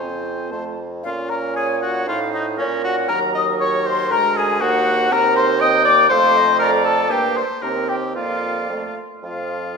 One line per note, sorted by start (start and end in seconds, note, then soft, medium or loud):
0.00 0.51 F2 medium
0.00 0.53 C4 medium
0.00 0.51 F4 medium
0.00 0.51 C5 medium
0.00 0.52 G#5 medium
0.51 1.04 F2 medium
0.51 0.78 A3 medium
0.51 0.78 F4 soft
0.51 0.64 C5 medium
0.51 0.78 A5 soft
1.03 2.09 A#2 medium
1.03 2.04 C#4 medium
1.03 1.32 F4 medium
1.03 1.09 F5 loud
1.29 1.55 A#4 medium
1.29 1.35 A#5 medium
1.54 1.68 G#4 medium
1.54 2.08 C#5 medium
1.54 1.79 G#5 loud
1.80 2.07 F#4 medium
1.80 2.05 F#5 loud
2.06 2.60 A2 medium
2.06 2.59 D#4 medium
2.06 2.20 F4 medium
2.06 2.56 C5 medium
2.06 2.32 F5 loud
2.33 2.45 D#4 medium
2.33 2.39 D#5 medium
2.57 3.12 A#2 medium
2.57 3.11 C#4 medium
2.57 2.83 C#4 medium
2.57 3.08 A#4 medium
2.57 2.63 C#5 medium
2.83 2.96 F#4 medium
2.83 3.10 F#5 loud
3.08 4.10 D#2 medium
3.08 4.11 F#3 medium
3.08 3.20 A#4 loud
3.08 4.58 A#4 medium
3.08 3.34 A#5 loud
3.34 3.46 D#5 medium
3.34 3.59 D#6 loud
3.60 3.88 C#5 loud
3.60 3.84 C#6 loud
3.86 4.13 C5 loud
3.86 4.10 C6 loud
4.11 4.63 D2 medium
4.11 4.62 G#3 medium
4.11 4.39 A#4 loud
4.11 4.36 A#5 loud
4.36 4.63 G#4 loud
4.36 4.63 G#5 loud
4.61 5.12 D#2 medium
4.61 5.12 A#3 medium
4.61 5.15 F#4 loud
4.61 5.10 C5 medium
4.61 5.13 F#5 loud
5.10 6.09 D#2 medium
5.10 5.60 C4 medium
5.10 5.60 A#4 loud
5.10 5.35 A#4 loud
5.10 5.38 A#5 loud
5.36 5.62 C5 loud
5.36 5.61 C6 loud
5.61 5.86 C4 medium
5.61 5.84 D#5 loud
5.61 6.13 G5 loud
5.61 5.67 D#6 loud
5.84 6.10 A#3 medium
5.84 6.09 D5 loud
5.84 6.10 D6 loud
6.10 7.12 F2 loud
6.10 7.09 A3 medium
6.10 6.59 C5 loud
6.10 6.39 F5 medium
6.10 6.60 C6 loud
6.37 6.61 D#5 medium
6.59 6.71 A#4 loud
6.59 7.13 D5 loud
6.59 6.86 A#5 loud
6.85 7.11 A4 medium
6.85 7.13 A5 loud
7.10 7.44 G2 medium
7.10 7.43 A#3 medium
7.10 7.39 G4 medium
7.10 7.48 C5 medium
7.10 7.35 G5 loud
7.36 7.63 C5 medium
7.36 7.42 C6 loud
7.62 8.18 D#2 medium
7.62 8.18 C4 medium
7.62 7.90 A#4 medium
7.62 7.97 A#4 medium
7.62 7.69 A#5 medium
7.89 8.15 G4 medium
7.89 7.95 G5 medium
8.16 8.69 F2 medium
8.16 8.70 A#3 medium
8.16 8.96 F4 medium
8.16 8.94 D5 medium
8.16 8.97 F5 medium
8.70 8.82 F2 medium
8.70 8.97 A3 medium
9.23 9.77 F2 medium
9.23 9.77 F3 medium
9.23 9.77 F4 medium
9.23 9.77 F5 medium